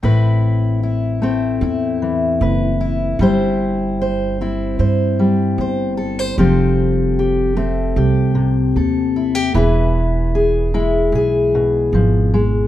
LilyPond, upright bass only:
\new Staff \with { instrumentName = "Upright bass" } { \clef bass \time 4/4 \key a \minor \tempo 4 = 76 a,,2 e,4 fis,,4 | g,,2 g,4 g,,4 | f,,2 c,4 dis,4 | e,,2 b,,4 gis,,4 | }